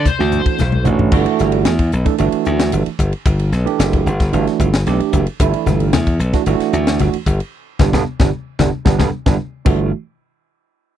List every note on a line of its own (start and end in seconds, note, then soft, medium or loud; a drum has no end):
0.05 0.83 C5 medium
0.05 kick medium
0.05 hi-hat pedal medium
0.05 ride medium
0.05 muted conga soft
0.05 high conga medium
0.05 low conga medium
0.18 0.44 D2 medium
0.18 0.61 E3 medium
0.18 0.61 A3 medium
0.18 0.61 D4 medium
0.18 0.61 F#4 medium
0.18 snare soft
0.32 hi-hat pedal medium
0.32 ride medium
0.32 low conga medium
0.46 kick medium
0.46 ride medium
0.58 0.84 B1 medium
0.58 snare soft
0.58 hi-hat pedal medium
0.58 high conga medium
0.72 high tom medium
0.72 high conga soft
0.84 1.10 A1 medium
0.84 1.10 E3 medium
0.84 1.11 A3 medium
0.84 1.10 D4 medium
0.84 1.11 F#4 loud
0.84 hi-hat pedal medium
0.84 mid tom medium
0.84 low conga medium
0.99 floor tom medium
0.99 low conga medium
1.11 1.25 G1 loud
1.11 1.71 E3 medium
1.11 1.72 A3 medium
1.11 1.72 D4 medium
1.11 1.72 F#4 loud
1.11 kick medium
1.11 crash medium
1.26 ride medium
1.39 1.64 G1 medium
1.39 snare soft
1.39 hi-hat pedal medium
1.52 ride medium
1.65 1.91 E2 medium
1.65 snare loud
1.65 hi-hat pedal medium
1.65 ride medium
1.79 kick medium
1.79 ride medium
1.92 2.05 B1 medium
1.92 hi-hat pedal medium
2.05 2.14 E3 medium
2.05 2.14 A3 medium
2.05 2.14 D4 medium
2.05 2.14 A4 medium
2.05 muted slap bass stroke soft
2.05 kick medium
2.05 ride medium
2.18 2.32 G1 medium
2.18 2.87 E3 medium
2.18 2.87 A3 medium
2.18 2.87 D4 medium
2.18 2.87 F#4 medium
2.18 hi-hat pedal medium
2.18 ride medium
2.32 muted slap bass stroke soft
2.32 ride medium
2.45 2.71 D2 medium
2.45 hi-hat pedal medium
2.59 snare loud
2.59 ride medium
2.72 2.85 G1 medium
2.72 hi-hat pedal medium
2.72 ride medium
2.86 ride medium
2.99 3.12 G1 medium
2.99 kick medium
2.99 hi-hat pedal medium
3.13 ride medium
3.26 3.50 G1 loud
3.26 kick loud
3.26 hi-hat pedal medium
3.26 ride medium
3.39 ride medium
3.52 3.65 B1 medium
3.52 snare soft
3.52 hi-hat pedal medium
3.65 4.08 E3 medium
3.65 4.08 A3 medium
3.65 4.08 D4 medium
3.65 4.08 G4 medium
3.65 ride medium
3.79 4.04 F#1 medium
3.79 snare loud
3.79 hi-hat pedal medium
3.79 ride medium
3.93 kick medium
3.93 ride medium
4.06 4.31 G1 medium
4.06 hi-hat pedal medium
4.20 kick medium
4.20 snare soft
4.20 ride medium
4.32 4.46 G1 medium
4.32 4.67 E3 medium
4.32 4.67 A3 medium
4.32 4.67 D4 medium
4.32 4.67 F#4 medium
4.32 hi-hat pedal medium
4.32 ride medium
4.47 snare soft
4.47 ride medium
4.60 4.84 G1 medium
4.60 kick medium
4.60 hi-hat pedal medium
4.73 snare loud
4.73 ride medium
4.87 4.99 B1 medium
4.87 5.21 E3 medium
4.87 5.21 A3 medium
4.87 5.21 D4 medium
4.87 5.21 G4 medium
4.87 snare soft
4.87 hi-hat pedal medium
4.87 ride medium
5.00 muted slap bass stroke soft
5.00 ride medium
5.13 5.26 F#1 medium
5.13 kick medium
5.13 hi-hat pedal medium
5.27 ride medium
5.40 5.52 G1 loud
5.40 5.99 E3 medium
5.40 5.99 A3 medium
5.40 5.99 D4 medium
5.40 6.00 E4 loud
5.40 kick loud
5.40 hi-hat pedal medium
5.40 ride medium
5.40 muted conga soft
5.54 ride medium
5.66 5.91 G1 medium
5.66 snare soft
5.66 hi-hat pedal medium
5.66 muted conga soft
5.66 high conga medium
5.80 ride medium
5.93 6.17 E2 medium
5.93 snare loud
5.93 hi-hat pedal medium
5.93 ride medium
5.93 high conga loud
6.07 kick medium
6.07 ride medium
6.19 6.32 B1 medium
6.19 hi-hat pedal medium
6.33 6.42 E3 medium
6.33 6.42 A3 medium
6.33 6.42 D4 medium
6.33 6.42 F#4 medium
6.33 muted slap bass stroke soft
6.33 kick medium
6.33 snare soft
6.33 ride medium
6.46 6.59 G1 medium
6.46 7.15 E3 medium
6.46 7.15 A3 medium
6.46 7.15 D4 medium
6.46 7.15 F#4 loud
6.46 hi-hat pedal medium
6.46 ride medium
6.60 muted slap bass stroke soft
6.60 snare soft
6.60 ride medium
6.73 6.98 D2 medium
6.73 hi-hat pedal medium
6.87 snare loud
6.87 ride medium
6.99 7.13 G1 loud
6.99 snare soft
6.99 hi-hat pedal medium
6.99 ride medium
6.99 high conga medium
7.13 muted slap bass stroke soft
7.13 ride medium
7.26 7.39 G1 medium
7.26 kick medium
7.26 hi-hat pedal medium
7.26 muted conga soft
7.40 ride medium
7.79 7.90 G1 medium
7.79 7.89 G3 loud
7.79 7.89 B3 medium
7.79 7.89 D4 medium
7.79 kick loud
7.79 snare medium
7.79 high conga loud
7.93 8.03 G1 loud
7.93 8.02 G3 loud
7.93 8.02 B3 loud
7.93 8.02 D4 loud
7.93 kick medium
7.93 snare medium
7.93 high conga medium
8.20 8.30 G1 medium
8.20 8.29 G3 loud
8.20 8.29 B3 medium
8.20 8.29 D4 loud
8.20 kick medium
8.20 snare medium
8.20 high conga medium
8.59 8.70 G1 medium
8.59 8.69 G3 medium
8.59 8.69 B3 medium
8.59 8.69 D4 medium
8.59 kick medium
8.59 snare medium
8.59 high conga loud
8.85 8.97 G1 loud
8.85 8.95 G3 loud
8.85 8.95 B3 loud
8.85 8.95 D4 loud
8.85 kick medium
8.85 snare medium
8.85 high conga loud
8.98 9.10 G1 medium
8.98 9.08 G3 loud
8.98 9.08 B3 loud
8.98 9.08 D4 loud
8.98 kick medium
8.98 snare medium
8.98 high conga medium
9.26 9.36 G1 loud
9.26 9.35 G3 loud
9.26 9.35 B3 loud
9.26 9.35 D4 loud
9.26 kick loud
9.26 snare loud
9.26 high conga medium
9.65 9.91 G1 medium
9.65 9.91 E3 medium
9.65 9.91 A3 medium
9.65 9.90 D4 medium
9.65 9.91 F#4 medium
9.65 kick loud
9.65 crash medium
9.65 muted conga medium